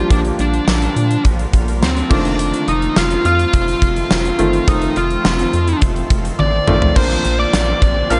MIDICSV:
0, 0, Header, 1, 8, 480
1, 0, Start_track
1, 0, Key_signature, -2, "major"
1, 0, Tempo, 571429
1, 89, Time_signature, 4, 2, 24, 8
1, 6886, End_track
2, 0, Start_track
2, 0, Title_t, "Synth bell"
2, 0, Program_c, 0, 98
2, 1533, Note_on_c, 0, 84, 72
2, 1754, Note_off_c, 0, 84, 0
2, 1770, Note_on_c, 0, 86, 84
2, 2216, Note_off_c, 0, 86, 0
2, 2254, Note_on_c, 0, 87, 89
2, 2475, Note_off_c, 0, 87, 0
2, 2496, Note_on_c, 0, 89, 86
2, 2716, Note_off_c, 0, 89, 0
2, 2737, Note_on_c, 0, 89, 83
2, 3899, Note_off_c, 0, 89, 0
2, 3934, Note_on_c, 0, 87, 83
2, 4155, Note_off_c, 0, 87, 0
2, 4176, Note_on_c, 0, 89, 82
2, 4859, Note_off_c, 0, 89, 0
2, 5365, Note_on_c, 0, 86, 80
2, 5813, Note_off_c, 0, 86, 0
2, 5846, Note_on_c, 0, 84, 80
2, 6182, Note_off_c, 0, 84, 0
2, 6208, Note_on_c, 0, 86, 80
2, 6543, Note_off_c, 0, 86, 0
2, 6569, Note_on_c, 0, 86, 80
2, 6792, Note_off_c, 0, 86, 0
2, 6807, Note_on_c, 0, 89, 95
2, 6886, Note_off_c, 0, 89, 0
2, 6886, End_track
3, 0, Start_track
3, 0, Title_t, "Lead electric guitar"
3, 0, Program_c, 1, 29
3, 101, Note_on_c, 1, 62, 96
3, 164, Note_off_c, 1, 62, 0
3, 341, Note_on_c, 1, 62, 81
3, 1021, Note_off_c, 1, 62, 0
3, 1538, Note_on_c, 1, 60, 84
3, 1757, Note_off_c, 1, 60, 0
3, 1780, Note_on_c, 1, 62, 98
3, 2256, Note_off_c, 1, 62, 0
3, 2259, Note_on_c, 1, 63, 101
3, 2497, Note_off_c, 1, 63, 0
3, 2500, Note_on_c, 1, 65, 104
3, 2718, Note_off_c, 1, 65, 0
3, 2737, Note_on_c, 1, 65, 106
3, 3936, Note_off_c, 1, 65, 0
3, 3940, Note_on_c, 1, 63, 101
3, 4178, Note_off_c, 1, 63, 0
3, 4181, Note_on_c, 1, 65, 96
3, 4862, Note_off_c, 1, 65, 0
3, 5374, Note_on_c, 1, 74, 97
3, 5850, Note_off_c, 1, 74, 0
3, 5853, Note_on_c, 1, 72, 110
3, 6209, Note_off_c, 1, 72, 0
3, 6212, Note_on_c, 1, 74, 99
3, 6566, Note_off_c, 1, 74, 0
3, 6576, Note_on_c, 1, 74, 89
3, 6812, Note_on_c, 1, 77, 101
3, 6820, Note_off_c, 1, 74, 0
3, 6886, Note_off_c, 1, 77, 0
3, 6886, End_track
4, 0, Start_track
4, 0, Title_t, "Grand piano"
4, 0, Program_c, 2, 0
4, 0, Control_c, 2, 64, 127
4, 0, Note_on_c, 2, 53, 86
4, 0, Note_on_c, 2, 58, 79
4, 0, Note_on_c, 2, 62, 76
4, 0, Note_on_c, 2, 67, 94
4, 79, Note_off_c, 2, 53, 0
4, 79, Note_on_c, 2, 53, 68
4, 83, Note_off_c, 2, 58, 0
4, 83, Note_on_c, 2, 58, 62
4, 87, Note_off_c, 2, 62, 0
4, 87, Note_on_c, 2, 62, 64
4, 90, Note_off_c, 2, 67, 0
4, 90, Note_on_c, 2, 67, 78
4, 99, Control_c, 2, 64, 0
4, 237, Control_c, 2, 64, 127
4, 901, Note_off_c, 2, 53, 0
4, 903, Note_off_c, 2, 58, 0
4, 905, Note_off_c, 2, 62, 0
4, 907, Note_off_c, 2, 67, 0
4, 1762, Note_on_c, 2, 51, 74
4, 1764, Note_on_c, 2, 57, 71
4, 1768, Note_on_c, 2, 60, 71
4, 1770, Note_on_c, 2, 65, 83
4, 1781, Control_c, 2, 64, 0
4, 1924, Control_c, 2, 64, 127
4, 2582, Note_off_c, 2, 51, 0
4, 2584, Note_off_c, 2, 57, 0
4, 2585, Note_off_c, 2, 60, 0
4, 2587, Note_off_c, 2, 65, 0
4, 3683, Note_on_c, 2, 51, 84
4, 3687, Note_on_c, 2, 57, 80
4, 3689, Note_on_c, 2, 60, 80
4, 3692, Note_on_c, 2, 65, 94
4, 3890, Note_off_c, 2, 51, 0
4, 3892, Note_off_c, 2, 57, 0
4, 3893, Note_off_c, 2, 60, 0
4, 3895, Note_off_c, 2, 65, 0
4, 3924, Note_on_c, 2, 51, 67
4, 3926, Note_on_c, 2, 57, 65
4, 3930, Note_on_c, 2, 60, 63
4, 3933, Note_on_c, 2, 65, 78
4, 4744, Note_off_c, 2, 51, 0
4, 4745, Note_off_c, 2, 57, 0
4, 4747, Note_off_c, 2, 60, 0
4, 4748, Note_off_c, 2, 65, 0
4, 5604, Note_on_c, 2, 51, 89
4, 5606, Note_on_c, 2, 57, 83
4, 5611, Note_on_c, 2, 60, 84
4, 5614, Note_on_c, 2, 65, 92
4, 5811, Note_off_c, 2, 51, 0
4, 5812, Note_off_c, 2, 57, 0
4, 5814, Note_off_c, 2, 60, 0
4, 5816, Note_off_c, 2, 65, 0
4, 5842, Note_on_c, 2, 53, 69
4, 5845, Note_on_c, 2, 58, 64
4, 5848, Note_on_c, 2, 60, 66
4, 5849, Note_on_c, 2, 62, 65
4, 5853, Note_on_c, 2, 70, 76
4, 5860, Control_c, 2, 64, 0
4, 6017, Control_c, 2, 64, 127
4, 6663, Note_off_c, 2, 53, 0
4, 6664, Note_off_c, 2, 58, 0
4, 6666, Note_off_c, 2, 60, 0
4, 6666, Note_off_c, 2, 62, 0
4, 6668, Note_off_c, 2, 70, 0
4, 6802, Note_on_c, 2, 53, 72
4, 6805, Note_on_c, 2, 58, 72
4, 6807, Note_on_c, 2, 60, 73
4, 6810, Note_on_c, 2, 62, 72
4, 6812, Note_on_c, 2, 70, 84
4, 6886, Note_off_c, 2, 53, 0
4, 6886, Note_off_c, 2, 58, 0
4, 6886, Note_off_c, 2, 60, 0
4, 6886, Note_off_c, 2, 62, 0
4, 6886, Note_off_c, 2, 70, 0
4, 6886, End_track
5, 0, Start_track
5, 0, Title_t, "Ambient pad"
5, 0, Program_c, 3, 92
5, 0, Note_on_c, 3, 50, 77
5, 0, Note_on_c, 3, 53, 73
5, 88, Note_on_c, 3, 55, 69
5, 88, Note_on_c, 3, 58, 69
5, 91, Note_on_c, 3, 65, 89
5, 1736, Note_off_c, 3, 50, 0
5, 1752, Note_off_c, 3, 55, 0
5, 1752, Note_off_c, 3, 58, 0
5, 1765, Note_on_c, 3, 51, 74
5, 1765, Note_on_c, 3, 57, 71
5, 1766, Note_on_c, 3, 60, 71
5, 5813, Note_off_c, 3, 51, 0
5, 5813, Note_off_c, 3, 57, 0
5, 5814, Note_off_c, 3, 60, 0
5, 5816, Note_off_c, 3, 53, 0
5, 5816, Note_off_c, 3, 65, 0
5, 5847, Note_on_c, 3, 65, 92
5, 5848, Note_on_c, 3, 53, 78
5, 5849, Note_on_c, 3, 50, 85
5, 5849, Note_on_c, 3, 58, 77
5, 5850, Note_on_c, 3, 60, 78
5, 6886, Note_off_c, 3, 50, 0
5, 6886, Note_off_c, 3, 53, 0
5, 6886, Note_off_c, 3, 58, 0
5, 6886, Note_off_c, 3, 60, 0
5, 6886, Note_off_c, 3, 65, 0
5, 6886, End_track
6, 0, Start_track
6, 0, Title_t, "Overdriven electric guitar"
6, 0, Program_c, 4, 29
6, 5842, Note_on_c, 4, 46, 78
6, 5851, Note_on_c, 4, 53, 83
6, 5862, Note_on_c, 4, 58, 92
6, 6067, Note_off_c, 4, 58, 0
6, 6077, Note_on_c, 4, 58, 63
6, 6085, Note_off_c, 4, 46, 0
6, 6090, Note_off_c, 4, 53, 0
6, 6106, Note_on_c, 4, 53, 47
6, 6799, Note_on_c, 4, 46, 63
6, 6804, Note_off_c, 4, 53, 0
6, 6814, Note_on_c, 4, 53, 69
6, 6824, Note_off_c, 4, 58, 0
6, 6828, Note_on_c, 4, 58, 67
6, 6886, Note_off_c, 4, 46, 0
6, 6886, Note_off_c, 4, 53, 0
6, 6886, Note_off_c, 4, 58, 0
6, 6886, End_track
7, 0, Start_track
7, 0, Title_t, "Analog synth bass"
7, 0, Program_c, 5, 38
7, 88, Note_on_c, 5, 34, 108
7, 261, Note_off_c, 5, 34, 0
7, 329, Note_on_c, 5, 34, 99
7, 502, Note_off_c, 5, 34, 0
7, 567, Note_on_c, 5, 34, 106
7, 741, Note_off_c, 5, 34, 0
7, 808, Note_on_c, 5, 46, 109
7, 981, Note_off_c, 5, 46, 0
7, 1051, Note_on_c, 5, 34, 107
7, 1223, Note_off_c, 5, 34, 0
7, 1289, Note_on_c, 5, 34, 111
7, 1529, Note_on_c, 5, 38, 101
7, 1542, Note_off_c, 5, 34, 0
7, 1702, Note_off_c, 5, 38, 0
7, 1770, Note_on_c, 5, 29, 107
7, 2115, Note_off_c, 5, 29, 0
7, 2249, Note_on_c, 5, 29, 97
7, 2422, Note_off_c, 5, 29, 0
7, 2490, Note_on_c, 5, 29, 103
7, 2662, Note_off_c, 5, 29, 0
7, 2729, Note_on_c, 5, 41, 103
7, 2902, Note_off_c, 5, 41, 0
7, 2970, Note_on_c, 5, 29, 111
7, 3143, Note_off_c, 5, 29, 0
7, 3209, Note_on_c, 5, 29, 107
7, 3382, Note_off_c, 5, 29, 0
7, 3450, Note_on_c, 5, 29, 95
7, 3623, Note_off_c, 5, 29, 0
7, 3689, Note_on_c, 5, 31, 100
7, 3862, Note_off_c, 5, 31, 0
7, 3929, Note_on_c, 5, 29, 109
7, 4102, Note_off_c, 5, 29, 0
7, 4169, Note_on_c, 5, 29, 93
7, 4342, Note_off_c, 5, 29, 0
7, 4409, Note_on_c, 5, 29, 106
7, 4582, Note_off_c, 5, 29, 0
7, 4649, Note_on_c, 5, 41, 106
7, 4822, Note_off_c, 5, 41, 0
7, 4889, Note_on_c, 5, 29, 105
7, 5062, Note_off_c, 5, 29, 0
7, 5128, Note_on_c, 5, 29, 93
7, 5301, Note_off_c, 5, 29, 0
7, 5369, Note_on_c, 5, 33, 100
7, 5541, Note_off_c, 5, 33, 0
7, 5607, Note_on_c, 5, 33, 96
7, 5781, Note_off_c, 5, 33, 0
7, 5848, Note_on_c, 5, 34, 120
7, 6021, Note_off_c, 5, 34, 0
7, 6089, Note_on_c, 5, 34, 98
7, 6262, Note_off_c, 5, 34, 0
7, 6329, Note_on_c, 5, 34, 102
7, 6502, Note_off_c, 5, 34, 0
7, 6569, Note_on_c, 5, 34, 110
7, 6742, Note_off_c, 5, 34, 0
7, 6808, Note_on_c, 5, 34, 104
7, 6886, Note_off_c, 5, 34, 0
7, 6886, End_track
8, 0, Start_track
8, 0, Title_t, "Drums"
8, 88, Note_on_c, 9, 36, 106
8, 88, Note_on_c, 9, 42, 87
8, 172, Note_off_c, 9, 36, 0
8, 172, Note_off_c, 9, 42, 0
8, 207, Note_on_c, 9, 42, 51
8, 291, Note_off_c, 9, 42, 0
8, 328, Note_on_c, 9, 42, 68
8, 412, Note_off_c, 9, 42, 0
8, 450, Note_on_c, 9, 42, 41
8, 534, Note_off_c, 9, 42, 0
8, 568, Note_on_c, 9, 38, 119
8, 568, Note_on_c, 9, 54, 66
8, 652, Note_off_c, 9, 38, 0
8, 652, Note_off_c, 9, 54, 0
8, 690, Note_on_c, 9, 42, 55
8, 774, Note_off_c, 9, 42, 0
8, 811, Note_on_c, 9, 42, 63
8, 895, Note_off_c, 9, 42, 0
8, 930, Note_on_c, 9, 42, 47
8, 1014, Note_off_c, 9, 42, 0
8, 1047, Note_on_c, 9, 42, 78
8, 1050, Note_on_c, 9, 36, 89
8, 1131, Note_off_c, 9, 42, 0
8, 1134, Note_off_c, 9, 36, 0
8, 1170, Note_on_c, 9, 42, 47
8, 1254, Note_off_c, 9, 42, 0
8, 1289, Note_on_c, 9, 36, 88
8, 1290, Note_on_c, 9, 42, 78
8, 1373, Note_off_c, 9, 36, 0
8, 1374, Note_off_c, 9, 42, 0
8, 1412, Note_on_c, 9, 42, 54
8, 1496, Note_off_c, 9, 42, 0
8, 1533, Note_on_c, 9, 38, 118
8, 1533, Note_on_c, 9, 54, 56
8, 1617, Note_off_c, 9, 38, 0
8, 1617, Note_off_c, 9, 54, 0
8, 1652, Note_on_c, 9, 42, 52
8, 1736, Note_off_c, 9, 42, 0
8, 1770, Note_on_c, 9, 36, 104
8, 1770, Note_on_c, 9, 49, 73
8, 1854, Note_off_c, 9, 36, 0
8, 1854, Note_off_c, 9, 49, 0
8, 1891, Note_on_c, 9, 42, 53
8, 1975, Note_off_c, 9, 42, 0
8, 2009, Note_on_c, 9, 42, 93
8, 2093, Note_off_c, 9, 42, 0
8, 2130, Note_on_c, 9, 42, 55
8, 2214, Note_off_c, 9, 42, 0
8, 2250, Note_on_c, 9, 42, 66
8, 2334, Note_off_c, 9, 42, 0
8, 2371, Note_on_c, 9, 42, 39
8, 2455, Note_off_c, 9, 42, 0
8, 2490, Note_on_c, 9, 38, 120
8, 2490, Note_on_c, 9, 54, 67
8, 2574, Note_off_c, 9, 38, 0
8, 2574, Note_off_c, 9, 54, 0
8, 2609, Note_on_c, 9, 42, 55
8, 2693, Note_off_c, 9, 42, 0
8, 2732, Note_on_c, 9, 42, 64
8, 2816, Note_off_c, 9, 42, 0
8, 2851, Note_on_c, 9, 42, 53
8, 2935, Note_off_c, 9, 42, 0
8, 2968, Note_on_c, 9, 42, 88
8, 2971, Note_on_c, 9, 36, 91
8, 3052, Note_off_c, 9, 42, 0
8, 3055, Note_off_c, 9, 36, 0
8, 3091, Note_on_c, 9, 42, 49
8, 3175, Note_off_c, 9, 42, 0
8, 3208, Note_on_c, 9, 42, 75
8, 3209, Note_on_c, 9, 36, 89
8, 3292, Note_off_c, 9, 42, 0
8, 3293, Note_off_c, 9, 36, 0
8, 3330, Note_on_c, 9, 42, 57
8, 3414, Note_off_c, 9, 42, 0
8, 3449, Note_on_c, 9, 54, 59
8, 3450, Note_on_c, 9, 38, 118
8, 3533, Note_off_c, 9, 54, 0
8, 3534, Note_off_c, 9, 38, 0
8, 3569, Note_on_c, 9, 42, 54
8, 3653, Note_off_c, 9, 42, 0
8, 3686, Note_on_c, 9, 42, 69
8, 3770, Note_off_c, 9, 42, 0
8, 3808, Note_on_c, 9, 42, 52
8, 3892, Note_off_c, 9, 42, 0
8, 3928, Note_on_c, 9, 42, 88
8, 3929, Note_on_c, 9, 36, 110
8, 4012, Note_off_c, 9, 42, 0
8, 4013, Note_off_c, 9, 36, 0
8, 4045, Note_on_c, 9, 42, 52
8, 4129, Note_off_c, 9, 42, 0
8, 4167, Note_on_c, 9, 42, 73
8, 4251, Note_off_c, 9, 42, 0
8, 4288, Note_on_c, 9, 42, 41
8, 4372, Note_off_c, 9, 42, 0
8, 4409, Note_on_c, 9, 38, 121
8, 4409, Note_on_c, 9, 54, 67
8, 4493, Note_off_c, 9, 38, 0
8, 4493, Note_off_c, 9, 54, 0
8, 4529, Note_on_c, 9, 42, 57
8, 4613, Note_off_c, 9, 42, 0
8, 4648, Note_on_c, 9, 42, 66
8, 4732, Note_off_c, 9, 42, 0
8, 4767, Note_on_c, 9, 42, 53
8, 4851, Note_off_c, 9, 42, 0
8, 4884, Note_on_c, 9, 42, 84
8, 4889, Note_on_c, 9, 36, 91
8, 4968, Note_off_c, 9, 42, 0
8, 4973, Note_off_c, 9, 36, 0
8, 5007, Note_on_c, 9, 42, 48
8, 5091, Note_off_c, 9, 42, 0
8, 5126, Note_on_c, 9, 42, 79
8, 5127, Note_on_c, 9, 36, 87
8, 5210, Note_off_c, 9, 42, 0
8, 5211, Note_off_c, 9, 36, 0
8, 5249, Note_on_c, 9, 42, 58
8, 5333, Note_off_c, 9, 42, 0
8, 5367, Note_on_c, 9, 48, 61
8, 5451, Note_off_c, 9, 48, 0
8, 5607, Note_on_c, 9, 45, 90
8, 5691, Note_off_c, 9, 45, 0
8, 5728, Note_on_c, 9, 43, 94
8, 5812, Note_off_c, 9, 43, 0
8, 5847, Note_on_c, 9, 57, 102
8, 5848, Note_on_c, 9, 36, 100
8, 5931, Note_off_c, 9, 57, 0
8, 5932, Note_off_c, 9, 36, 0
8, 6087, Note_on_c, 9, 42, 66
8, 6171, Note_off_c, 9, 42, 0
8, 6329, Note_on_c, 9, 38, 122
8, 6329, Note_on_c, 9, 42, 84
8, 6329, Note_on_c, 9, 54, 65
8, 6413, Note_off_c, 9, 38, 0
8, 6413, Note_off_c, 9, 42, 0
8, 6413, Note_off_c, 9, 54, 0
8, 6569, Note_on_c, 9, 36, 93
8, 6570, Note_on_c, 9, 42, 63
8, 6653, Note_off_c, 9, 36, 0
8, 6654, Note_off_c, 9, 42, 0
8, 6808, Note_on_c, 9, 42, 86
8, 6886, Note_off_c, 9, 42, 0
8, 6886, End_track
0, 0, End_of_file